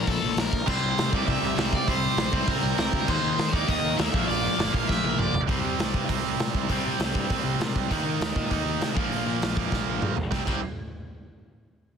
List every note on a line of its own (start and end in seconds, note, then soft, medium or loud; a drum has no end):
0.00 0.21 A#2 medium
0.00 0.22 F3 medium
0.00 0.20 A#3 loud
0.07 0.16 A#1 medium
0.07 0.36 A4 medium
0.07 kick loud
0.07 open hi-hat medium
0.21 0.32 A#1 medium
0.21 0.53 A#2 medium
0.21 0.52 F3 medium
0.21 0.51 A#3 medium
0.37 0.46 A#1 loud
0.37 0.68 A#4 loud
0.37 snare loud
0.37 open hi-hat medium
0.52 0.62 A#1 medium
0.52 kick medium
0.66 0.77 C2 loud
0.66 1.11 C3 medium
0.66 1.12 G3 loud
0.66 1.09 C4 loud
0.66 1.10 C5 loud
0.66 kick loud
0.66 crash loud
0.83 0.92 C2 loud
0.98 1.07 C3 loud
0.98 snare loud
0.98 open hi-hat medium
1.10 1.22 C2 medium
1.10 1.54 C3 medium
1.10 1.57 G3 loud
1.10 1.56 C4 loud
1.10 1.27 D5 loud
1.10 kick medium
1.27 1.37 C2 loud
1.27 1.57 E5 loud
1.27 kick loud
1.27 open hi-hat medium
1.41 1.51 C2 medium
1.56 1.76 C2 loud
1.56 1.86 C3 medium
1.56 1.89 G3 medium
1.56 1.88 C4 medium
1.56 1.75 E5 loud
1.56 snare loud
1.56 open hi-hat medium
1.73 1.88 D5 loud
1.73 kick medium
1.87 2.06 C2 loud
1.87 2.32 C3 loud
1.87 2.33 G3 loud
1.87 2.31 C4 loud
1.87 2.32 C5 loud
1.87 kick loud
1.87 open hi-hat medium
2.17 2.27 A#1 loud
2.17 snare loud
2.17 open hi-hat medium
2.32 2.42 C2 loud
2.32 2.75 C3 medium
2.32 2.77 G3 loud
2.32 2.77 C4 loud
2.32 2.49 C5 loud
2.32 kick loud
2.47 2.57 C2 loud
2.47 2.76 A#4 medium
2.47 kick loud
2.47 open hi-hat medium
2.63 2.72 C2 medium
2.76 2.87 C2 loud
2.76 3.06 C3 medium
2.76 3.07 G3 medium
2.76 3.08 C4 loud
2.76 3.09 A#4 loud
2.76 snare loud
2.76 open hi-hat medium
2.93 3.02 D2 medium
2.93 kick medium
3.08 3.17 D#2 loud
3.08 3.52 D#3 loud
3.08 3.53 A#3 loud
3.08 3.52 D#4 loud
3.08 3.53 C5 loud
3.08 kick loud
3.08 crash loud
3.23 3.32 D#2 medium
3.38 3.48 D#3 loud
3.38 snare loud
3.38 open hi-hat medium
3.53 3.62 D#2 loud
3.53 3.96 D#3 medium
3.53 3.98 A#3 loud
3.53 3.97 D#4 loud
3.53 3.68 D5 loud
3.53 kick loud
3.68 3.78 D#2 loud
3.68 3.97 D#5 loud
3.68 kick loud
3.68 open hi-hat medium
3.83 3.92 D#2 medium
3.97 4.08 D#2 loud
3.97 4.11 D#3 medium
3.97 4.13 A#3 medium
3.97 4.26 E5 loud
3.97 snare loud
3.97 open hi-hat medium
4.01 4.14 D#4 medium
4.12 4.23 A#1 loud
4.12 4.56 A#2 medium
4.12 4.58 F3 loud
4.12 4.59 A#3 loud
4.12 kick loud
4.28 4.47 A#1 loud
4.28 4.73 D5 loud
4.28 open hi-hat medium
4.57 4.68 G1 medium
4.57 5.02 A#2 medium
4.57 5.04 F3 medium
4.57 5.01 A#3 medium
4.57 snare loud
4.57 open hi-hat medium
4.73 4.83 A#1 loud
4.73 4.88 F5 loud
4.73 kick medium
4.89 4.98 A#1 loud
4.89 5.19 E5 loud
4.89 kick loud
4.89 snare medium
5.03 5.13 A#1 medium
5.03 5.34 A#2 medium
5.03 5.33 F3 medium
5.03 5.32 A#3 medium
5.03 high tom medium
5.18 5.28 A#1 loud
5.18 5.40 D5 loud
5.18 mid tom loud
5.34 5.43 A#1 loud
5.34 floor tom loud
5.47 5.60 C2 medium
5.47 6.67 C3 medium
5.47 6.69 G3 medium
5.47 6.69 C4 medium
5.47 kick loud
5.47 open hi-hat medium
5.64 5.75 C3 medium
5.79 5.90 C2 medium
5.79 snare loud
5.79 open hi-hat medium
5.94 6.05 G2 medium
5.94 kick medium
6.09 6.20 C2 medium
6.09 6.68 C3 medium
6.09 6.71 G3 medium
6.09 6.69 C4 medium
6.09 kick medium
6.09 open hi-hat medium
6.24 6.35 C2 medium
6.39 6.51 A#2 medium
6.39 snare loud
6.39 open hi-hat medium
6.54 6.65 C2 medium
6.54 kick medium
6.68 6.81 C2 loud
6.68 7.89 C3 medium
6.68 7.90 G3 medium
6.68 7.90 C4 loud
6.68 kick medium
6.68 open hi-hat medium
6.85 6.96 C3 medium
6.99 7.10 C2 medium
6.99 snare loud
6.99 open hi-hat medium
7.15 7.26 G2 loud
7.15 kick medium
7.29 7.41 C2 medium
7.29 7.89 C3 medium
7.29 7.90 G3 medium
7.29 7.90 C4 medium
7.29 kick medium
7.29 open hi-hat medium
7.44 7.55 C2 medium
7.60 7.71 A#2 medium
7.60 snare loud
7.60 open hi-hat medium
7.76 7.87 C2 medium
7.76 kick medium
7.89 8.02 D#2 medium
7.89 8.94 D#3 medium
7.89 8.95 A#3 medium
7.89 kick medium
7.89 open hi-hat medium
7.93 8.97 D#4 loud
8.05 8.16 D#3 medium
8.20 8.31 D#2 medium
8.20 snare loud
8.20 open hi-hat medium
8.36 8.47 A#2 medium
8.36 kick medium
8.50 8.62 D#2 medium
8.50 8.95 D#3 medium
8.50 8.95 A#3 medium
8.50 8.96 D#4 medium
8.50 kick medium
8.50 open hi-hat medium
8.65 8.76 D#2 medium
8.81 8.92 C3 medium
8.81 snare loud
8.81 open hi-hat medium
8.94 9.07 A#1 medium
8.94 10.15 A#2 medium
8.94 10.15 F3 medium
8.94 10.16 A#3 medium
8.94 kick loud
9.11 9.22 A#1 medium
9.11 open hi-hat medium
9.26 9.37 A#2 medium
9.41 9.52 A#1 medium
9.41 snare loud
9.41 open hi-hat medium
9.54 9.67 F2 medium
9.54 10.16 A#2 medium
9.54 10.15 F3 medium
9.54 10.15 A#3 medium
9.54 kick medium
9.72 9.83 A#1 medium
9.72 kick loud
9.72 snare medium
9.87 9.98 A#1 medium
10.02 10.13 G2 medium
10.02 mid tom medium
10.17 10.28 A#1 medium
10.17 floor tom medium
10.31 10.40 C2 medium
10.31 10.41 C3 loud
10.31 10.41 G3 loud
10.31 10.41 C4 medium
10.31 kick loud
10.31 snare medium
10.46 10.61 C2 medium
10.46 10.59 C3 loud
10.46 10.59 G3 medium
10.46 10.59 C4 loud
10.46 kick loud
10.46 crash medium